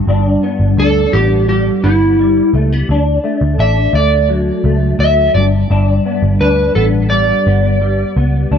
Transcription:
Already playing: D3
0.07 G1 G2 D4
0.43 B3
0.60 G1
0.77 D2 D4 A4
1.13 A1 B3 G4
1.48 G3 G4
1.83 G1 B3 E4
2.19 G3
2.54 C#2 A3
2.72 B3
2.89 D2 D4
3.24 A3
3.41 D2
3.58 A1 D4 E5
3.93 D2 A3 D5
4.29 F#3
4.64 C#2 A3
4.99 D2 F#3 E5
5.35 G1 G2 D5
5.70 G1 G2 D4
6.06 B3
6.22 G1
6.40 D2 D4 B4
6.75 A1 B3 A4
7.10 G3 D5
7.47 G1 B3
7.81 G3
8.16 C#2 B3
8.51 D2 D4

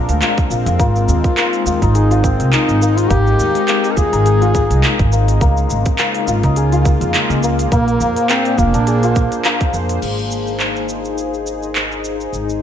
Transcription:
Already playing: A#2 G#3 A#3 C4 D4 F4 A#4
0.09 D2, open hi-hat, shaker
0.22 F4, clap, open hi-hat, shaker
0.38 kick, open hi-hat, shaker
0.50 A#1 F4, shaker
0.66 F2 F4, open hi-hat, shaker
0.79 G#1 A#3 F4, kick, open hi-hat, shaker
0.96 shaker
1.04 D#4
1.08 D#2, shaker
1.24 kick, open hi-hat, shaker
1.37 A#3, clap, open hi-hat, shaker
1.53 open hi-hat, shaker
1.66 D#2 F4, shaker
1.82 G#1 D#4, kick, open hi-hat, shaker
1.95 D#4 G#4, open hi-hat, shaker
2.11 F4, open hi-hat, shaker
2.24 A#3 C4, kick, shaker
2.40 C2, open hi-hat, shaker
2.53 D#4, clap, open hi-hat, shaker
2.69 G#1, open hi-hat, shaker
2.82 A#3, shaker
2.97 F4, open hi-hat, shaker
3.10 G#1 A#3 G4, kick, open hi-hat, shaker
3.27 shaker
3.39 D#2, shaker
3.55 open hi-hat, shaker
3.68 A#3, clap, open hi-hat, shaker
3.84 open hi-hat, shaker
3.91 A#4
3.97 D#2 F4 G#4, kick, shaker
4.13 G#1 D#4, open hi-hat, shaker
4.25 G#4, open hi-hat, shaker
4.41 F4, open hi-hat, shaker
4.55 A#3, kick, shaker
4.70 C2, open hi-hat, shaker
4.84 clap, open hi-hat, shaker
4.99 G#1, kick, open hi-hat, shaker
5.12 A#3, shaker
5.28 open hi-hat, shaker
5.41 C#2 C#3 A#3, kick, open hi-hat, shaker
5.57 shaker
5.69 G#1 A#3, shaker
5.86 kick, open hi-hat, shaker
5.99 A#3, clap, open hi-hat, shaker
6.06 F4
6.15 open hi-hat, shaker
6.28 G#1 F4, shaker
6.43 C#2 D#4, kick, open hi-hat, shaker
6.56 G#4, open hi-hat, shaker
6.72 F4, open hi-hat, shaker
6.85 A#3, kick, shaker
7.01 F2, open hi-hat, shaker
7.14 clap, open hi-hat, shaker
7.30 C#2, open hi-hat, shaker
7.43 A#3, shaker
7.59 open hi-hat, shaker
7.72 A#1 A#2 A#3, kick, open hi-hat, shaker
7.88 open hi-hat, shaker
7.94 C5
8.01 F2, shaker
8.06 G#4
8.17 open hi-hat, shaker
8.26 A#3 C4 D4, clap, open hi-hat, shaker
8.45 open hi-hat, shaker
8.58 F1 A#3 F4, kick, shaker
8.74 A#1 D4, open hi-hat, shaker
8.87 G#4, open hi-hat, shaker
9.03 F4, open hi-hat, shaker
9.16 kick, shaker
9.32 open hi-hat, shaker
9.45 A#3, clap, open hi-hat, shaker
9.61 kick, open hi-hat, shaker
9.73 F2 A#3, shaker
9.89 open hi-hat, shaker
10.02 G#1, crash, shaker
10.19 shaker
10.31 D#4, shaker
10.47 shaker
10.60 clap, shaker
10.76 shaker
10.89 shaker
11.05 shaker
11.18 shaker
11.34 shaker
11.47 shaker
11.63 shaker
11.76 clap, shaker
11.92 shaker
12.05 shaker
12.21 shaker
12.33 G#1, shaker
12.49 shaker

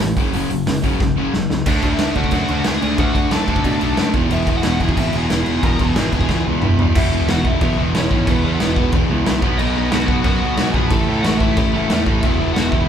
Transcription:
0.00 A1 A2 E3
0.17 F#1 F#2 C#3 F#3, kick, open hi-hat
0.33 F#1 F#2 C#3 F#3, open hi-hat
0.50 F#1 F#2 C#3, open hi-hat
0.67 F#1 F#2 C#3, snare, open hi-hat
0.83 F#1 F#2 C#3 F#3, kick, open hi-hat
1.00 F#1 F#2 C#3, kick, snare
1.17 F#1 F#2 C#3 F#3
1.34 F#1 F#2 C#3, snare
1.50 C#2 F#2 C#3, snare
1.66 D2 D3 A3 D4 D5, kick, crash
1.82 D2 D3 A3 D4, kick, crash
1.92 E4 E5
1.99 D2 D3 A3 D4, snare, crash
2.15 D2 D3 A3 D4 F#4 F#5, kick, crash
2.24 kick
2.31 F#2 D3 A3, kick, crash
2.35 D4
2.48 D2 D3 A3 D4, crash
2.64 D2 D3 A3 D4 G#4 G#5, snare, crash
2.82 D2 D3 A3 D4, crash
2.98 D2 D3 A3 D4 F#4 F#5, kick, crash
3.15 D2 D3 A3 D4, kick, crash
3.31 F#2 D3 A3 D4 A4 A5, snare, crash
3.47 D2 D3 A3 D4, kick, crash
3.56 kick
3.63 B2 D3 A3 D4, kick, crash
3.81 B1 D3 A3 D4, crash
3.97 F#2 D3 A3 D4, snare, crash
4.14 E1 E2 B2 E3, kick, crash
4.31 E1 E2 B2 E3 E4 E5, crash
4.47 E1 E2 B2 E3, kick, crash
4.57 F#4 F#5
4.63 E1 E2 B2 E3, snare, crash
4.80 E1 E2 B2 E3 G#4 G#5, kick, crash
4.89 kick
4.97 G#1 E2 B2 E3 E4 E5, kick, crash
5.13 E1 E2 B2 E3 G#5, crash
5.17 G#4
5.30 E1 E2 B2 E3, snare, crash
5.46 E1 E2 B2 E3, crash
5.63 E1 E2 B2 E3 A#4 A#5, kick, crash
5.79 E1 E2 B2 E3 G#4 G#5, kick, crash
5.96 G#1 E2 B2 E3, snare, crash
6.12 E1 E2 B2 E3, kick, crash
6.21 kick
6.29 C#2 E2 B2 E3, kick, snare
6.46 C#2 E2 B2 E3
6.62 E1 E2 B2 E3, mid tom
6.79 E2 B2 E3, floor tom
6.95 E1 E2 B2 E3 E4 E5, kick, crash
7.13 E2 B2 E3
7.28 E1 E2 B2 E3 F#4 F#5, snare, crash
7.45 E2 B2 E3 E4 E5, kick
7.61 B1 E2 B2 E3, kick, crash
7.78 E1 E2 B2 E3
7.95 E1 E2 B2 E3 C#4 C#5, snare, crash
8.11 G#1 E2 B2 E3, kick
8.27 E1 E2 B2 E3 B3 B4, kick, crash
8.44 E2 B2 E3
8.60 E1 E2 B2 E3, snare, crash
8.76 E2 B2 E3, kick
8.92 E1 E2 B2 E3, kick, crash
9.10 C#2 E2 B2 E3
9.26 B1 E2 B2 E3, snare, crash
9.42 B1 B2 F#3 B3, kick
9.58 B1 B2 F#3 B3 D#4 D#5, crash
9.75 B2 F#3 B3
9.91 B1 B2 F#3 B3 F#4 F#5, snare, crash
10.08 B2 F#3 B3, kick
10.22 F#2 B2 F#3 B3 F#4 F#5, kick, crash
10.40 B1 B2 F#3 B3
10.57 B1 B2 F#3 B3, snare, crash
10.72 A#1 B2 F#3 B3 G#4 G#5, kick
10.88 A1 A2 A4 A5, kick, crash
10.92 E3 A3
11.08 A2 E3 A3
11.21 A1 A2 F#4 F#5, snare, crash
11.25 E3 A3
11.39 A3 E4 E5, kick
11.43 A2 E3
11.57 A1 A2 E3 A3, kick, crash
11.74 F#1 A2 E3 A3
11.90 E2 A2 E3 A3, snare, crash
12.06 A1 A2 E3 A3, kick
12.21 E1 E2 B2 E5, kick, crash
12.25 E3 E4
12.40 E2 B2 E3
12.53 E2 B2 E3 F#5, snare, crash
12.58 E1 F#4
12.69 B2 E3 E5, kick
12.74 E2 E4

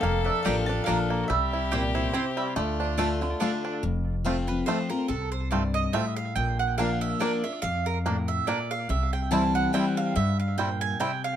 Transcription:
Already playing: G4 A4
0.01 F1 F2 A#3 F5
0.24 D4 E5
0.43 A1 F3 A#3 D4 F4 G4 D5 F5 A#5
0.47 F4
0.66 D4 F4 A5
0.84 F3 A#3 D4 F4 D5 F5 A#5
0.88 A#1 A#3 D4 F4
1.10 A#3
1.23 F#4
1.28 C2 C3 G3 G4 E5
1.53 E4
1.71 A#2 C4 E4 G4 C5 D5 G5
1.95 E4 C5
2.13 C3 C4 E4 C5 G5
2.37 G3 E5
2.56 D2 D3 A3 F4 D5
2.80 D4
2.98 D3 A3 D4 F4 D5 A5
3.21 D3 D4 F4
3.40 D3 A3 D4 F4 D5 A5
3.65 D4
3.83 F1 F2
4.24 F3 A3 C4 F4
4.47 C4 F4 B4
4.66 F3 A3 C4 F4 C5
4.90 C4 F4 A#4
5.08 C2 C3 A4
5.32 C5
5.51 G2 A3 C4 F4 D5
5.74 D#5
5.93 A2 A3 C4 F4 E5
6.16 F5
6.36 A#1 A#2 G5
6.59 F#5
6.78 F3 A#3 D4 F4 F5
7.01 E5
7.20 F3 A#3 D4 F4 D5
7.44 D4 F4 E5
7.62 F2 F5
7.86 A#4
8.06 A2 A#3 D4
8.28 E5
8.47 A#2 A#3 D4 D5
8.71 F5
8.89 C2 C3 E5
9.13 G5
9.31 E3 G3 C4 E4 A5
9.55 F#5
9.73 E3 G3 C4 E4 G5
9.97 F5
10.16 G2 E5
10.40 F5
10.58 A#2 G3 C4 E4 G5
10.81 G#5
11.00 C3 G3 C4 E4 G5
11.24 F5

